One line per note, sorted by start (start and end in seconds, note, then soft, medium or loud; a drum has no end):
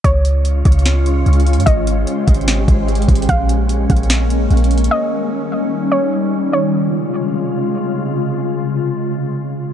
0.04 0.63 C#2 loud
0.04 1.65 C#3 medium
0.04 4.87 G#3 medium
0.04 3.25 C#4 medium
0.04 1.65 C#4 medium
0.04 1.65 F4 medium
0.04 1.63 C#5 loud
0.04 1.65 C#5 medium
0.04 kick loud
0.04 closed hi-hat medium
0.25 closed hi-hat medium
0.45 closed hi-hat medium
0.65 1.24 C#2 loud
0.65 kick loud
0.65 closed hi-hat medium
0.72 closed hi-hat medium
0.79 closed hi-hat soft
0.85 snare loud
0.85 closed hi-hat medium
1.06 closed hi-hat medium
1.26 1.58 C#2 loud
1.26 closed hi-hat soft
1.33 closed hi-hat soft
1.40 closed hi-hat medium
1.47 closed hi-hat medium
1.53 1.66 G#2 loud
1.53 closed hi-hat medium
1.60 closed hi-hat medium
1.66 2.06 G#1 loud
1.66 3.27 G#3 medium
1.66 3.27 G4 medium
1.66 3.27 C5 medium
1.66 2.84 D#5 medium
1.66 kick loud
1.66 closed hi-hat medium
1.87 closed hi-hat medium
2.07 closed hi-hat medium
2.27 2.67 G#1 loud
2.27 kick medium
2.27 closed hi-hat medium
2.27 open hi-hat medium
2.34 closed hi-hat medium
2.41 closed hi-hat soft
2.48 snare loud
2.48 closed hi-hat medium
2.68 3.07 G#1 loud
2.68 kick medium
2.68 closed hi-hat medium
2.88 closed hi-hat soft
2.95 closed hi-hat soft
3.02 closed hi-hat medium
3.08 3.28 G#1 loud
3.08 kick medium
3.08 closed hi-hat medium
3.15 closed hi-hat medium
3.22 closed hi-hat medium
3.29 3.87 A#1 loud
3.29 4.90 A#3 medium
3.29 4.89 C#4 medium
3.29 4.87 F5 medium
3.29 kick loud
3.29 closed hi-hat medium
3.49 closed hi-hat medium
3.69 closed hi-hat medium
3.90 4.48 A#1 loud
3.90 kick loud
3.90 closed hi-hat medium
3.97 closed hi-hat medium
4.03 closed hi-hat soft
4.10 snare loud
4.10 closed hi-hat medium
4.30 closed hi-hat medium
4.51 4.89 A#1 loud
4.51 closed hi-hat soft
4.57 closed hi-hat soft
4.64 closed hi-hat medium
4.71 closed hi-hat medium
4.78 closed hi-hat medium
4.84 closed hi-hat medium
4.91 6.51 D#3 medium
4.91 6.51 G3 medium
4.91 6.51 C#4 medium
4.91 5.88 D#5 loud
5.92 6.49 C#5 medium
6.53 9.73 C3 medium
6.53 9.73 C#3 medium
6.53 9.73 G#3 medium
6.53 9.73 F4 medium
6.53 7.71 C#5 medium